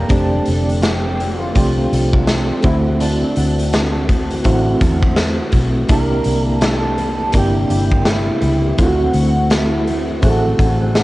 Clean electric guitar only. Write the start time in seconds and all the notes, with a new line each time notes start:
0.11 D4
0.82 G4
1.38 F4
1.55 F4
2.66 E4
3.01 D4
5.92 A#4
6.43 A4
6.65 A4
7.38 G4
8.10 E4
8.83 F#4
9.55 E4
10.25 F#4